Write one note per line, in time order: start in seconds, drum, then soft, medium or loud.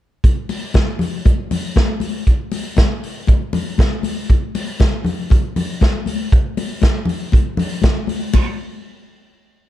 0.24 kick loud
0.24 closed hi-hat medium
0.24 muted conga soft
0.49 open hi-hat medium
0.49 muted conga soft
0.74 kick loud
0.74 snare loud
0.74 closed hi-hat medium
0.74 high conga medium
0.99 open hi-hat medium
0.99 low conga medium
1.25 kick loud
1.25 closed hi-hat medium
1.25 muted conga medium
1.51 open hi-hat medium
1.51 muted conga soft
1.51 low conga medium
1.76 kick medium
1.76 snare loud
1.76 closed hi-hat medium
1.76 high conga medium
2.00 open hi-hat medium
2.00 high conga medium
2.27 kick medium
2.27 closed hi-hat medium
2.52 open hi-hat medium
2.52 muted conga medium
2.77 kick loud
2.77 snare loud
2.77 closed hi-hat medium
2.77 high conga medium
3.04 open hi-hat medium
3.27 kick loud
3.27 closed hi-hat medium
3.27 muted conga soft
3.53 open hi-hat medium
3.53 muted conga soft
3.53 low conga medium
3.78 kick loud
3.78 snare loud
3.78 closed hi-hat medium
3.78 high conga medium
4.03 open hi-hat medium
4.03 high conga medium
4.30 kick medium
4.30 closed hi-hat medium
4.30 muted conga soft
4.55 open hi-hat medium
4.55 muted conga medium
4.80 kick loud
4.80 snare loud
4.80 closed hi-hat medium
4.80 high conga medium
5.05 open hi-hat medium
5.05 low conga medium
5.30 kick loud
5.30 closed hi-hat medium
5.30 muted conga soft
5.56 open hi-hat medium
5.56 muted conga soft
5.56 low conga medium
5.81 kick loud
5.81 snare medium
5.81 closed hi-hat medium
5.81 high conga medium
6.06 open hi-hat medium
6.06 high conga medium
6.32 kick loud
6.32 closed hi-hat medium
6.57 open hi-hat medium
6.57 muted conga medium
6.82 kick loud
6.82 snare loud
6.82 closed hi-hat medium
6.82 high conga medium
7.05 open hi-hat medium
7.05 low conga medium
7.32 kick loud
7.32 closed hi-hat medium
7.32 muted conga medium
7.57 open hi-hat medium
7.57 muted conga medium
7.57 low conga medium
7.82 kick loud
7.82 snare loud
7.82 closed hi-hat medium
7.82 high conga medium
8.07 open hi-hat medium
8.07 high conga medium
8.34 kick medium
8.34 crash medium
8.34 muted conga medium